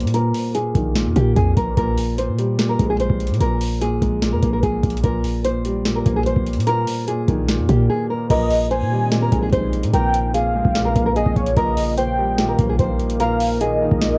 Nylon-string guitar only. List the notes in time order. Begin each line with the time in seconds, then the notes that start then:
Already playing: C5
0.14 A#4
0.55 G#4
1.16 G4
1.36 G#4
1.57 A#4
1.77 A#4
2.18 C5
2.69 A#4
2.90 G#4
3.00 C5
3.41 A#4
3.81 G#4
4.32 A#4
4.53 A#4
4.63 G#4
5.04 A#4
5.45 C5
5.96 A#4
6.16 G#4
6.26 C5
6.67 A#4
7.08 G#4
7.69 G4
7.90 G#4
8.10 A#4
8.30 A#4
8.71 C5
9.22 A#4
9.43 G#4
9.53 C5
9.93 A#4
10.34 G#4
10.85 A#4
11.06 A#4
11.16 G#4
11.57 A#4
11.98 C5
12.49 A#4
12.69 G#4
12.79 C5
13.20 A#4
13.61 G#4